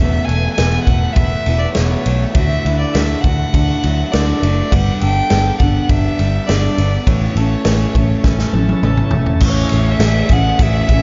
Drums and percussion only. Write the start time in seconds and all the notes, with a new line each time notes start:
0.00 ride
0.29 ride
0.58 snare, ride
0.87 kick, ride
1.16 kick, ride
1.46 ride
1.75 snare, ride
2.06 ride
2.35 kick, ride
2.66 ride
2.95 snare, ride
3.24 kick, ride
3.54 kick, ride
3.83 ride
4.13 snare, ride
4.43 ride
4.72 kick, ride
5.01 ride
5.30 snare, ride
5.60 kick, ride
5.89 kick, ride
6.19 ride
6.49 snare, ride
6.78 ride
7.07 kick, ride
7.37 ride
7.65 snare, ride
7.95 kick, ride
8.24 kick, snare
8.39 snare
8.53 high tom
8.69 high tom
8.83 mid tom
8.97 mid tom
9.11 floor tom
9.26 floor tom
9.40 kick, crash, shaker
9.58 shaker
9.69 ride, shaker
10.00 snare, ride, shaker
10.17 shaker
10.29 kick, ride, shaker
10.59 kick, ride, shaker
10.75 shaker
10.89 kick, ride, shaker